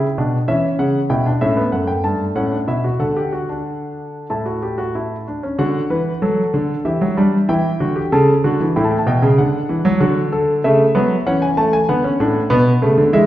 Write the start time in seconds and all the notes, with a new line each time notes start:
Already playing: G5
0.18 B2 D4
0.48 E3 C#4 E5
0.79 C#3 F#5
1.10 B2 E4 G5
1.26 D4
1.41 A2 C#4 E5
1.57 B3
1.72 F#2 A3 F#5
1.87 G5
2.04 G2 A5
2.35 A2 C#4 F#5
2.52 D4
2.67 B2 E4 E5
2.84 F#4
3.00 D3 A4 F#5
3.17 G4
3.33 F#4
3.49 D4
4.30 A2 E4 A5
4.46 F#4
4.63 G4
4.78 F#4
4.95 E4
5.28 D4
5.43 C#4
5.58 D3 F#4 F#5
5.90 E3 B4
6.22 F#3 A4
6.54 D3
6.85 E3 G4 E5
7.01 F#3
7.17 G3 D4
7.49 E3 E4 G5
7.80 D3 F#4
7.96 G4
8.12 C#3 A4 A5
8.44 D3 F#4
8.61 E3
8.76 A2 E4 G5
8.84 A5
8.91 G5
8.98 A5
9.07 B2 G5
9.22 C#3
9.38 D3 D4 F#5
9.69 E3
9.85 F#3
10.00 D3 F#4
10.32 A4
10.64 C#3 A3 E5
10.95 F#3 B3
11.27 E3 C#4 F#5
11.42 G#5
11.57 A3 A5
11.73 G#5
11.89 D3 B3 F#5
12.04 C#4
12.20 A2 D4
12.50 B2 B3
12.82 C#3 A3
12.98 D3
13.13 E3 G#3 E5